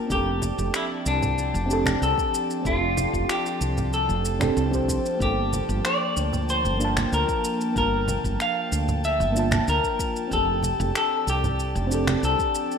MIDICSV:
0, 0, Header, 1, 6, 480
1, 0, Start_track
1, 0, Tempo, 638298
1, 74, Time_signature, 4, 2, 24, 8
1, 9611, End_track
2, 0, Start_track
2, 0, Title_t, "Analog synth pad"
2, 0, Program_c, 0, 89
2, 80, Note_on_c, 0, 81, 98
2, 81, Note_on_c, 0, 74, 77
2, 82, Note_on_c, 0, 79, 78
2, 83, Note_on_c, 0, 53, 83
2, 3888, Note_off_c, 0, 74, 0
2, 3915, Note_on_c, 0, 58, 79
2, 7725, Note_off_c, 0, 58, 0
2, 7755, Note_on_c, 0, 74, 78
2, 9611, Note_off_c, 0, 53, 0
2, 9611, Note_off_c, 0, 74, 0
2, 9611, Note_off_c, 0, 79, 0
2, 9611, Note_off_c, 0, 81, 0
2, 9611, End_track
3, 0, Start_track
3, 0, Title_t, "Clean electric guitar"
3, 0, Program_c, 1, 27
3, 0, Note_on_c, 1, 70, 100
3, 85, Note_off_c, 1, 70, 0
3, 88, Note_on_c, 1, 67, 110
3, 567, Note_off_c, 1, 67, 0
3, 570, Note_on_c, 1, 64, 92
3, 633, Note_off_c, 1, 64, 0
3, 809, Note_on_c, 1, 62, 93
3, 1527, Note_on_c, 1, 69, 98
3, 1543, Note_off_c, 1, 62, 0
3, 2005, Note_on_c, 1, 65, 96
3, 2015, Note_off_c, 1, 69, 0
3, 2488, Note_on_c, 1, 67, 94
3, 2494, Note_off_c, 1, 65, 0
3, 2959, Note_off_c, 1, 67, 0
3, 2962, Note_on_c, 1, 69, 91
3, 3648, Note_off_c, 1, 69, 0
3, 3927, Note_on_c, 1, 67, 89
3, 4402, Note_off_c, 1, 67, 0
3, 4405, Note_on_c, 1, 74, 99
3, 4885, Note_off_c, 1, 74, 0
3, 4888, Note_on_c, 1, 72, 97
3, 5331, Note_off_c, 1, 72, 0
3, 5370, Note_on_c, 1, 70, 95
3, 5701, Note_off_c, 1, 70, 0
3, 5848, Note_on_c, 1, 70, 106
3, 6327, Note_off_c, 1, 70, 0
3, 6330, Note_on_c, 1, 77, 113
3, 6772, Note_off_c, 1, 77, 0
3, 6805, Note_on_c, 1, 76, 108
3, 7287, Note_off_c, 1, 76, 0
3, 7290, Note_on_c, 1, 70, 101
3, 7767, Note_off_c, 1, 70, 0
3, 7770, Note_on_c, 1, 69, 105
3, 8242, Note_off_c, 1, 69, 0
3, 8251, Note_on_c, 1, 69, 96
3, 8490, Note_off_c, 1, 69, 0
3, 8494, Note_on_c, 1, 67, 92
3, 9208, Note_off_c, 1, 67, 0
3, 9211, Note_on_c, 1, 69, 93
3, 9611, Note_off_c, 1, 69, 0
3, 9611, End_track
4, 0, Start_track
4, 0, Title_t, "FM electric piano"
4, 0, Program_c, 2, 5
4, 0, Control_c, 2, 64, 127
4, 0, Note_on_c, 2, 58, 87
4, 0, Note_on_c, 2, 62, 81
4, 0, Note_on_c, 2, 65, 79
4, 0, Note_on_c, 2, 81, 97
4, 48, Note_on_c, 2, 60, 66
4, 68, Note_off_c, 2, 62, 0
4, 68, Note_on_c, 2, 62, 65
4, 82, Note_on_c, 2, 67, 70
4, 84, Control_c, 2, 64, 0
4, 88, Note_off_c, 2, 58, 0
4, 90, Note_off_c, 2, 65, 0
4, 92, Note_off_c, 2, 81, 0
4, 102, Note_on_c, 2, 69, 79
4, 201, Control_c, 2, 64, 127
4, 1234, Note_off_c, 2, 60, 0
4, 1243, Note_off_c, 2, 62, 0
4, 1248, Note_on_c, 2, 60, 89
4, 1251, Note_off_c, 2, 67, 0
4, 1260, Note_off_c, 2, 69, 0
4, 1264, Note_on_c, 2, 62, 82
4, 1282, Note_on_c, 2, 67, 81
4, 1300, Note_on_c, 2, 69, 104
4, 1953, Note_off_c, 2, 60, 0
4, 1961, Note_off_c, 2, 62, 0
4, 1969, Note_on_c, 2, 60, 70
4, 1970, Note_off_c, 2, 67, 0
4, 1979, Note_off_c, 2, 69, 0
4, 1988, Note_on_c, 2, 62, 66
4, 2005, Note_on_c, 2, 67, 68
4, 2021, Note_on_c, 2, 69, 73
4, 3154, Note_off_c, 2, 60, 0
4, 3163, Note_off_c, 2, 62, 0
4, 3172, Note_off_c, 2, 67, 0
4, 3180, Note_off_c, 2, 69, 0
4, 3304, Note_on_c, 2, 60, 88
4, 3312, Note_on_c, 2, 62, 84
4, 3322, Note_on_c, 2, 67, 82
4, 3330, Note_on_c, 2, 69, 98
4, 3521, Note_off_c, 2, 60, 0
4, 3526, Note_off_c, 2, 62, 0
4, 3530, Note_off_c, 2, 67, 0
4, 3534, Note_off_c, 2, 69, 0
4, 3544, Note_on_c, 2, 60, 92
4, 3551, Note_on_c, 2, 62, 89
4, 3560, Note_on_c, 2, 67, 88
4, 3570, Note_on_c, 2, 72, 100
4, 3880, Note_off_c, 2, 60, 0
4, 3883, Note_off_c, 2, 62, 0
4, 3888, Note_off_c, 2, 67, 0
4, 3891, Note_on_c, 2, 58, 73
4, 3893, Note_off_c, 2, 72, 0
4, 3909, Note_on_c, 2, 62, 66
4, 3925, Control_c, 2, 64, 0
4, 3925, Note_on_c, 2, 65, 67
4, 3944, Note_on_c, 2, 69, 81
4, 4076, Control_c, 2, 64, 127
4, 5075, Note_off_c, 2, 58, 0
4, 5084, Note_off_c, 2, 62, 0
4, 5092, Note_off_c, 2, 65, 0
4, 5095, Note_on_c, 2, 58, 88
4, 5101, Note_off_c, 2, 69, 0
4, 5111, Note_on_c, 2, 62, 86
4, 5130, Note_on_c, 2, 65, 80
4, 5148, Note_on_c, 2, 81, 102
4, 5797, Note_off_c, 2, 58, 0
4, 5805, Note_off_c, 2, 62, 0
4, 5808, Note_on_c, 2, 58, 68
4, 5814, Note_off_c, 2, 65, 0
4, 5823, Note_off_c, 2, 81, 0
4, 5825, Note_on_c, 2, 62, 66
4, 5844, Note_on_c, 2, 65, 64
4, 5861, Note_on_c, 2, 81, 76
4, 6993, Note_off_c, 2, 58, 0
4, 7002, Note_off_c, 2, 62, 0
4, 7010, Note_on_c, 2, 58, 85
4, 7011, Note_off_c, 2, 65, 0
4, 7020, Note_off_c, 2, 81, 0
4, 7028, Note_on_c, 2, 62, 78
4, 7046, Note_on_c, 2, 65, 82
4, 7064, Note_on_c, 2, 81, 96
4, 7715, Note_off_c, 2, 58, 0
4, 7723, Note_off_c, 2, 62, 0
4, 7727, Note_on_c, 2, 60, 68
4, 7732, Note_off_c, 2, 65, 0
4, 7741, Note_off_c, 2, 81, 0
4, 7744, Note_on_c, 2, 62, 66
4, 7763, Note_on_c, 2, 67, 70
4, 7765, Control_c, 2, 64, 0
4, 7779, Note_on_c, 2, 69, 75
4, 7897, Control_c, 2, 64, 127
4, 8913, Note_off_c, 2, 60, 0
4, 8922, Note_off_c, 2, 62, 0
4, 8926, Note_on_c, 2, 60, 92
4, 8931, Note_off_c, 2, 67, 0
4, 8939, Note_off_c, 2, 69, 0
4, 8945, Note_on_c, 2, 62, 84
4, 8961, Note_on_c, 2, 67, 82
4, 8980, Note_on_c, 2, 69, 95
4, 9611, Note_off_c, 2, 60, 0
4, 9611, Note_off_c, 2, 62, 0
4, 9611, Note_off_c, 2, 67, 0
4, 9611, Note_off_c, 2, 69, 0
4, 9611, End_track
5, 0, Start_track
5, 0, Title_t, "Fretless electric bass"
5, 0, Program_c, 3, 35
5, 75, Note_on_c, 3, 29, 97
5, 379, Note_off_c, 3, 29, 0
5, 439, Note_on_c, 3, 29, 101
5, 520, Note_off_c, 3, 29, 0
5, 796, Note_on_c, 3, 36, 80
5, 1159, Note_on_c, 3, 29, 97
5, 1170, Note_off_c, 3, 36, 0
5, 1459, Note_off_c, 3, 29, 0
5, 1516, Note_on_c, 3, 36, 87
5, 1602, Note_off_c, 3, 36, 0
5, 1993, Note_on_c, 3, 29, 100
5, 2298, Note_off_c, 3, 29, 0
5, 2356, Note_on_c, 3, 29, 101
5, 2439, Note_off_c, 3, 29, 0
5, 2714, Note_on_c, 3, 36, 77
5, 3076, Note_on_c, 3, 29, 91
5, 3087, Note_off_c, 3, 36, 0
5, 3378, Note_off_c, 3, 29, 0
5, 3434, Note_on_c, 3, 36, 95
5, 3739, Note_off_c, 3, 36, 0
5, 3912, Note_on_c, 3, 31, 96
5, 4218, Note_off_c, 3, 31, 0
5, 4278, Note_on_c, 3, 31, 99
5, 4360, Note_off_c, 3, 31, 0
5, 4636, Note_on_c, 3, 38, 75
5, 4999, Note_on_c, 3, 31, 85
5, 5010, Note_off_c, 3, 38, 0
5, 5299, Note_off_c, 3, 31, 0
5, 5356, Note_on_c, 3, 38, 88
5, 5442, Note_off_c, 3, 38, 0
5, 5834, Note_on_c, 3, 31, 103
5, 6139, Note_off_c, 3, 31, 0
5, 6199, Note_on_c, 3, 31, 106
5, 6280, Note_off_c, 3, 31, 0
5, 6557, Note_on_c, 3, 38, 79
5, 6919, Note_on_c, 3, 31, 94
5, 6930, Note_off_c, 3, 38, 0
5, 7219, Note_off_c, 3, 31, 0
5, 7277, Note_on_c, 3, 38, 87
5, 7363, Note_off_c, 3, 38, 0
5, 7756, Note_on_c, 3, 29, 100
5, 8060, Note_off_c, 3, 29, 0
5, 8120, Note_on_c, 3, 29, 111
5, 8201, Note_off_c, 3, 29, 0
5, 8475, Note_on_c, 3, 36, 77
5, 8839, Note_on_c, 3, 29, 100
5, 8850, Note_off_c, 3, 36, 0
5, 9139, Note_off_c, 3, 29, 0
5, 9196, Note_on_c, 3, 36, 92
5, 9282, Note_off_c, 3, 36, 0
5, 9611, End_track
6, 0, Start_track
6, 0, Title_t, "Drums"
6, 75, Note_on_c, 9, 36, 117
6, 79, Note_on_c, 9, 82, 50
6, 150, Note_off_c, 9, 36, 0
6, 154, Note_off_c, 9, 82, 0
6, 314, Note_on_c, 9, 63, 82
6, 318, Note_on_c, 9, 82, 78
6, 390, Note_off_c, 9, 63, 0
6, 394, Note_off_c, 9, 82, 0
6, 441, Note_on_c, 9, 82, 37
6, 516, Note_off_c, 9, 82, 0
6, 556, Note_on_c, 9, 26, 71
6, 559, Note_on_c, 9, 82, 42
6, 631, Note_off_c, 9, 26, 0
6, 634, Note_off_c, 9, 82, 0
6, 797, Note_on_c, 9, 82, 81
6, 873, Note_off_c, 9, 82, 0
6, 920, Note_on_c, 9, 64, 80
6, 922, Note_on_c, 9, 82, 34
6, 995, Note_off_c, 9, 64, 0
6, 997, Note_off_c, 9, 82, 0
6, 1040, Note_on_c, 9, 82, 46
6, 1115, Note_off_c, 9, 82, 0
6, 1165, Note_on_c, 9, 82, 33
6, 1240, Note_off_c, 9, 82, 0
6, 1282, Note_on_c, 9, 82, 75
6, 1358, Note_off_c, 9, 82, 0
6, 1396, Note_on_c, 9, 63, 107
6, 1403, Note_on_c, 9, 26, 80
6, 1406, Note_on_c, 9, 82, 35
6, 1471, Note_off_c, 9, 63, 0
6, 1478, Note_off_c, 9, 26, 0
6, 1481, Note_off_c, 9, 82, 0
6, 1522, Note_on_c, 9, 82, 45
6, 1598, Note_off_c, 9, 82, 0
6, 1637, Note_on_c, 9, 36, 114
6, 1647, Note_on_c, 9, 82, 32
6, 1712, Note_off_c, 9, 36, 0
6, 1722, Note_off_c, 9, 82, 0
6, 1763, Note_on_c, 9, 82, 83
6, 1838, Note_off_c, 9, 82, 0
6, 1884, Note_on_c, 9, 82, 37
6, 1959, Note_off_c, 9, 82, 0
6, 1993, Note_on_c, 9, 36, 120
6, 1999, Note_on_c, 9, 82, 45
6, 2068, Note_off_c, 9, 36, 0
6, 2074, Note_off_c, 9, 82, 0
6, 2234, Note_on_c, 9, 63, 88
6, 2238, Note_on_c, 9, 82, 84
6, 2309, Note_off_c, 9, 63, 0
6, 2313, Note_off_c, 9, 82, 0
6, 2356, Note_on_c, 9, 36, 60
6, 2363, Note_on_c, 9, 82, 38
6, 2431, Note_off_c, 9, 36, 0
6, 2438, Note_off_c, 9, 82, 0
6, 2477, Note_on_c, 9, 26, 69
6, 2480, Note_on_c, 9, 82, 43
6, 2552, Note_off_c, 9, 26, 0
6, 2555, Note_off_c, 9, 82, 0
6, 2602, Note_on_c, 9, 82, 32
6, 2677, Note_off_c, 9, 82, 0
6, 2717, Note_on_c, 9, 82, 82
6, 2793, Note_off_c, 9, 82, 0
6, 2839, Note_on_c, 9, 82, 33
6, 2841, Note_on_c, 9, 64, 69
6, 2914, Note_off_c, 9, 82, 0
6, 2916, Note_off_c, 9, 64, 0
6, 2957, Note_on_c, 9, 82, 47
6, 3032, Note_off_c, 9, 82, 0
6, 3080, Note_on_c, 9, 82, 32
6, 3156, Note_off_c, 9, 82, 0
6, 3197, Note_on_c, 9, 82, 79
6, 3272, Note_off_c, 9, 82, 0
6, 3312, Note_on_c, 9, 64, 82
6, 3316, Note_on_c, 9, 26, 78
6, 3317, Note_on_c, 9, 63, 97
6, 3319, Note_on_c, 9, 82, 34
6, 3388, Note_off_c, 9, 64, 0
6, 3391, Note_off_c, 9, 26, 0
6, 3392, Note_off_c, 9, 63, 0
6, 3394, Note_off_c, 9, 82, 0
6, 3437, Note_on_c, 9, 82, 44
6, 3512, Note_off_c, 9, 82, 0
6, 3556, Note_on_c, 9, 36, 61
6, 3561, Note_on_c, 9, 82, 33
6, 3631, Note_off_c, 9, 36, 0
6, 3636, Note_off_c, 9, 82, 0
6, 3673, Note_on_c, 9, 36, 112
6, 3679, Note_on_c, 9, 82, 83
6, 3748, Note_off_c, 9, 36, 0
6, 3754, Note_off_c, 9, 82, 0
6, 3803, Note_on_c, 9, 82, 35
6, 3878, Note_off_c, 9, 82, 0
6, 3913, Note_on_c, 9, 36, 122
6, 3921, Note_on_c, 9, 82, 45
6, 3988, Note_off_c, 9, 36, 0
6, 3996, Note_off_c, 9, 82, 0
6, 4158, Note_on_c, 9, 63, 72
6, 4159, Note_on_c, 9, 82, 77
6, 4233, Note_off_c, 9, 63, 0
6, 4234, Note_off_c, 9, 82, 0
6, 4282, Note_on_c, 9, 82, 33
6, 4358, Note_off_c, 9, 82, 0
6, 4397, Note_on_c, 9, 26, 71
6, 4400, Note_on_c, 9, 82, 43
6, 4472, Note_off_c, 9, 26, 0
6, 4475, Note_off_c, 9, 82, 0
6, 4638, Note_on_c, 9, 82, 76
6, 4714, Note_off_c, 9, 82, 0
6, 4758, Note_on_c, 9, 64, 76
6, 4764, Note_on_c, 9, 82, 34
6, 4833, Note_off_c, 9, 64, 0
6, 4839, Note_off_c, 9, 82, 0
6, 4881, Note_on_c, 9, 82, 44
6, 4956, Note_off_c, 9, 82, 0
6, 5002, Note_on_c, 9, 82, 32
6, 5078, Note_off_c, 9, 82, 0
6, 5118, Note_on_c, 9, 82, 74
6, 5193, Note_off_c, 9, 82, 0
6, 5239, Note_on_c, 9, 26, 70
6, 5239, Note_on_c, 9, 63, 96
6, 5242, Note_on_c, 9, 82, 35
6, 5314, Note_off_c, 9, 63, 0
6, 5315, Note_off_c, 9, 26, 0
6, 5318, Note_off_c, 9, 82, 0
6, 5359, Note_on_c, 9, 82, 43
6, 5434, Note_off_c, 9, 82, 0
6, 5478, Note_on_c, 9, 36, 109
6, 5480, Note_on_c, 9, 82, 32
6, 5553, Note_off_c, 9, 36, 0
6, 5555, Note_off_c, 9, 82, 0
6, 5598, Note_on_c, 9, 82, 82
6, 5673, Note_off_c, 9, 82, 0
6, 5722, Note_on_c, 9, 82, 35
6, 5797, Note_off_c, 9, 82, 0
6, 5835, Note_on_c, 9, 36, 106
6, 5839, Note_on_c, 9, 82, 44
6, 5910, Note_off_c, 9, 36, 0
6, 5914, Note_off_c, 9, 82, 0
6, 6074, Note_on_c, 9, 63, 83
6, 6080, Note_on_c, 9, 82, 77
6, 6149, Note_off_c, 9, 63, 0
6, 6155, Note_off_c, 9, 82, 0
6, 6197, Note_on_c, 9, 36, 57
6, 6204, Note_on_c, 9, 82, 32
6, 6273, Note_off_c, 9, 36, 0
6, 6279, Note_off_c, 9, 82, 0
6, 6318, Note_on_c, 9, 26, 68
6, 6321, Note_on_c, 9, 82, 40
6, 6393, Note_off_c, 9, 26, 0
6, 6396, Note_off_c, 9, 82, 0
6, 6559, Note_on_c, 9, 82, 76
6, 6634, Note_off_c, 9, 82, 0
6, 6681, Note_on_c, 9, 82, 31
6, 6682, Note_on_c, 9, 64, 78
6, 6756, Note_off_c, 9, 82, 0
6, 6757, Note_off_c, 9, 64, 0
6, 6799, Note_on_c, 9, 82, 41
6, 6874, Note_off_c, 9, 82, 0
6, 6924, Note_on_c, 9, 82, 28
6, 6999, Note_off_c, 9, 82, 0
6, 7040, Note_on_c, 9, 82, 75
6, 7115, Note_off_c, 9, 82, 0
6, 7153, Note_on_c, 9, 63, 102
6, 7155, Note_on_c, 9, 64, 75
6, 7159, Note_on_c, 9, 26, 78
6, 7162, Note_on_c, 9, 82, 31
6, 7228, Note_off_c, 9, 63, 0
6, 7230, Note_off_c, 9, 64, 0
6, 7234, Note_off_c, 9, 26, 0
6, 7237, Note_off_c, 9, 82, 0
6, 7278, Note_on_c, 9, 82, 42
6, 7354, Note_off_c, 9, 82, 0
6, 7397, Note_on_c, 9, 36, 57
6, 7402, Note_on_c, 9, 82, 31
6, 7472, Note_off_c, 9, 36, 0
6, 7478, Note_off_c, 9, 82, 0
6, 7514, Note_on_c, 9, 36, 103
6, 7519, Note_on_c, 9, 82, 77
6, 7589, Note_off_c, 9, 36, 0
6, 7594, Note_off_c, 9, 82, 0
6, 7642, Note_on_c, 9, 82, 33
6, 7718, Note_off_c, 9, 82, 0
6, 7755, Note_on_c, 9, 36, 110
6, 7760, Note_on_c, 9, 82, 46
6, 7830, Note_off_c, 9, 36, 0
6, 7836, Note_off_c, 9, 82, 0
6, 7991, Note_on_c, 9, 63, 75
6, 8001, Note_on_c, 9, 82, 81
6, 8066, Note_off_c, 9, 63, 0
6, 8076, Note_off_c, 9, 82, 0
6, 8124, Note_on_c, 9, 82, 33
6, 8199, Note_off_c, 9, 82, 0
6, 8238, Note_on_c, 9, 26, 69
6, 8241, Note_on_c, 9, 82, 43
6, 8313, Note_off_c, 9, 26, 0
6, 8316, Note_off_c, 9, 82, 0
6, 8481, Note_on_c, 9, 82, 75
6, 8556, Note_off_c, 9, 82, 0
6, 8603, Note_on_c, 9, 64, 78
6, 8604, Note_on_c, 9, 82, 30
6, 8678, Note_off_c, 9, 64, 0
6, 8679, Note_off_c, 9, 82, 0
6, 8720, Note_on_c, 9, 82, 40
6, 8795, Note_off_c, 9, 82, 0
6, 8842, Note_on_c, 9, 82, 29
6, 8917, Note_off_c, 9, 82, 0
6, 8959, Note_on_c, 9, 82, 75
6, 9035, Note_off_c, 9, 82, 0
6, 9079, Note_on_c, 9, 63, 95
6, 9080, Note_on_c, 9, 26, 74
6, 9083, Note_on_c, 9, 82, 34
6, 9155, Note_off_c, 9, 63, 0
6, 9156, Note_off_c, 9, 26, 0
6, 9158, Note_off_c, 9, 82, 0
6, 9199, Note_on_c, 9, 82, 45
6, 9274, Note_off_c, 9, 82, 0
6, 9318, Note_on_c, 9, 36, 108
6, 9322, Note_on_c, 9, 82, 30
6, 9394, Note_off_c, 9, 36, 0
6, 9397, Note_off_c, 9, 82, 0
6, 9437, Note_on_c, 9, 82, 74
6, 9512, Note_off_c, 9, 82, 0
6, 9562, Note_on_c, 9, 82, 33
6, 9611, Note_off_c, 9, 82, 0
6, 9611, End_track
0, 0, End_of_file